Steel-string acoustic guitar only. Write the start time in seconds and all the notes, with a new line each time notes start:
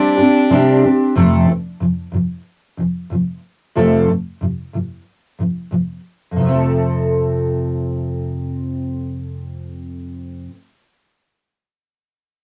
Already playing: G3 C4 D4 G4
0.17 C4 D4 G4
0.50 C3 G3 C4 D4 G4
0.83 C4 D4 G4
1.15 F2 C3 F3 A3 C4 A4
1.47 F2 C3 F3
1.80 F2 C3 F3
2.12 F2 C3 F3
2.77 F2 C3 F3
3.10 F2 C3 F3
3.75 F2 C3 F3 A3 C4 A4
4.09 F2 C3 F3
4.41 F2 C3 F3
4.73 F2 C3 F3
5.39 F2 C3 F3
5.71 F2 C3 F3
6.31 F2
6.36 C3
6.40 F3
6.44 A3 C4
6.52 A4